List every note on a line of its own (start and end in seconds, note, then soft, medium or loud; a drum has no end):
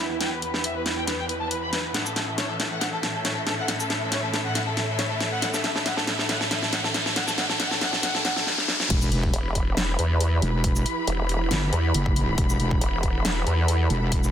0.00 1.90 E2 medium
0.00 8.43 E3 medium
0.00 1.90 B3 medium
0.00 3.01 E4 medium
0.00 1.90 G4 medium
0.00 1.90 B4 medium
0.00 3.00 B4 medium
0.00 2.62 F#5 medium
0.00 riser medium
0.10 0.17 E4 medium
0.20 0.28 G5 medium
0.20 snare medium
0.20 closed hi-hat medium
0.32 0.39 B4 medium
0.42 0.50 B4 medium
0.42 closed hi-hat medium
0.54 0.60 B4 medium
0.54 snare medium
0.64 0.71 E5 medium
0.64 closed hi-hat medium
0.76 0.82 B4 medium
0.86 0.93 B4 medium
0.86 snare medium
0.86 closed hi-hat soft
0.97 1.04 G5 medium
1.07 1.15 B4 medium
1.07 snare medium
1.07 closed hi-hat medium
1.19 1.26 G5 medium
1.29 1.37 B4 medium
1.29 closed hi-hat medium
1.41 1.47 A5 medium
1.51 1.58 B4 medium
1.51 closed hi-hat medium
1.63 1.69 B5 medium
1.73 1.80 B4 medium
1.73 snare medium
1.73 closed hi-hat soft
1.84 1.91 B4 medium
1.94 8.43 A2 medium
1.94 8.43 C#4 medium
1.94 8.47 A4 medium
1.94 8.43 A4 medium
1.94 8.43 E5 medium
1.94 2.02 F#5 medium
1.94 snare medium
1.94 closed hi-hat medium
2.06 2.12 A4 medium
2.06 shaker medium
2.16 2.24 A4 medium
2.16 snare medium
2.16 closed hi-hat soft
2.27 2.34 A4 medium
2.27 8.47 E5 medium
2.27 8.47 B5 medium
2.38 2.45 C#5 medium
2.38 snare medium
2.38 closed hi-hat medium
2.50 2.56 A4 medium
2.60 2.67 A4 medium
2.60 snare medium
2.60 closed hi-hat medium
2.71 2.78 F#5 medium
2.81 2.89 F#5 medium
2.81 snare medium
2.81 closed hi-hat medium
2.93 3.00 A4 medium
3.03 3.11 A4 medium
3.03 snare medium
3.03 closed hi-hat medium
3.15 3.21 A4 medium
3.25 3.32 C#5 medium
3.25 snare medium
3.25 closed hi-hat medium
3.36 3.43 A4 medium
3.47 3.54 A4 medium
3.47 snare medium
3.47 closed hi-hat soft
3.58 3.65 F#5 medium
3.68 3.76 F#5 medium
3.68 snare medium
3.68 closed hi-hat medium
3.80 3.86 A4 medium
3.80 shaker medium
3.90 3.97 A4 medium
3.90 snare medium
3.90 closed hi-hat medium
4.01 4.08 A4 medium
4.12 4.19 C#5 medium
4.12 snare medium
4.12 closed hi-hat medium
4.23 4.30 A4 medium
4.33 4.41 A4 medium
4.33 snare medium
4.33 closed hi-hat soft
4.45 4.52 F#5 medium
4.55 4.63 F#5 loud
4.55 snare medium
4.55 closed hi-hat medium
4.67 4.73 A4 medium
4.77 4.85 A4 medium
4.77 snare medium
4.77 closed hi-hat medium
4.89 4.95 A4 medium
4.99 5.06 C#5 medium
4.99 snare medium
4.99 closed hi-hat medium
5.10 5.17 A4 medium
5.20 5.28 A4 medium
5.20 snare medium
5.20 closed hi-hat soft
5.32 5.39 F#5 medium
5.42 5.50 F#5 medium
5.42 snare medium
5.42 closed hi-hat medium
5.54 5.60 A4 medium
5.54 snare medium
5.54 shaker medium
5.64 5.71 A4 medium
5.64 snare medium
5.64 closed hi-hat medium
5.76 5.82 A4 medium
5.76 snare medium
5.86 5.93 F#5 loud
5.86 snare medium
5.86 closed hi-hat medium
5.97 6.04 A4 medium
5.97 snare medium
6.07 6.15 A4 medium
6.07 snare loud
6.07 closed hi-hat soft
6.19 6.26 A4 medium
6.19 snare medium
6.29 6.37 F#5 loud
6.29 snare medium
6.29 closed hi-hat medium
6.41 6.47 A4 medium
6.41 snare medium
6.51 6.58 A4 medium
6.51 snare loud
6.51 closed hi-hat medium
6.63 6.69 A4 medium
6.63 snare medium
6.73 6.80 F#5 loud
6.73 snare loud
6.73 closed hi-hat medium
6.84 6.91 A4 medium
6.84 snare medium
6.94 7.02 A4 medium
6.94 snare loud
6.94 closed hi-hat soft
7.06 7.13 A4 medium
7.06 snare medium
7.16 7.24 F#5 loud
7.16 snare loud
7.16 closed hi-hat medium
7.28 7.34 A4 medium
7.28 snare medium
7.28 shaker medium
7.38 7.45 F#5 loud
7.38 snare loud
7.38 closed hi-hat medium
7.50 7.56 A4 medium
7.50 snare medium
7.60 7.67 F#5 loud
7.60 snare loud
7.60 closed hi-hat medium
7.71 7.78 A4 medium
7.71 snare medium
7.81 7.89 F#5 loud
7.81 snare loud
7.81 closed hi-hat medium
7.93 8.00 A4 medium
7.93 snare medium
8.03 8.11 F#5 loud
8.03 snare loud
8.03 closed hi-hat medium
8.15 8.21 A4 medium
8.15 snare loud
8.25 8.32 F#5 loud
8.25 snare loud
8.25 closed hi-hat medium
8.36 8.43 A4 medium
8.36 snare medium
8.47 snare medium
8.58 snare medium
8.68 snare medium
8.80 snare medium
8.90 9.10 E1 medium
8.90 14.31 E3 medium
8.90 14.31 E4 medium
8.90 14.31 G4 medium
8.90 12.34 B4 medium
8.90 14.31 B5 medium
8.90 kick loud
8.90 closed hi-hat medium
8.90 crash loud
8.90 impact medium
9.02 shaker medium
9.12 9.32 E1 medium
9.12 closed hi-hat medium
9.23 kick loud
9.34 9.97 E1 medium
9.34 closed hi-hat medium
9.53 14.31 B4 medium
9.53 kick medium
9.53 closed hi-hat medium
9.77 snare loud
9.77 closed hi-hat medium
9.99 10.41 E2 medium
9.99 closed hi-hat medium
10.17 14.31 F#5 loud
10.17 closed hi-hat medium
10.42 10.84 E1 loud
10.42 closed hi-hat medium
10.64 kick loud
10.64 closed hi-hat medium
10.76 shaker medium
10.86 closed hi-hat medium
11.07 11.49 E1 loud
11.07 closed hi-hat medium
11.29 closed hi-hat medium
11.51 11.71 G1 loud
11.51 snare loud
11.51 closed hi-hat medium
11.73 11.93 E2 medium
11.73 closed hi-hat medium
11.94 12.36 F#1 loud
11.94 closed hi-hat medium
12.06 kick loud
12.16 closed hi-hat medium
12.38 12.58 E1 loud
12.38 14.31 A4 medium
12.38 kick loud
12.38 closed hi-hat medium
12.50 shaker soft
12.60 12.80 E1 loud
12.60 closed hi-hat medium
12.71 kick loud
12.81 13.45 E1 medium
12.81 closed hi-hat medium
13.03 kick medium
13.03 closed hi-hat medium
13.25 snare loud
13.25 closed hi-hat medium
13.47 13.88 E2 medium
13.47 closed hi-hat medium
13.68 closed hi-hat medium
13.90 14.31 E1 loud
13.90 closed hi-hat medium
14.12 kick loud
14.12 closed hi-hat medium
14.23 shaker medium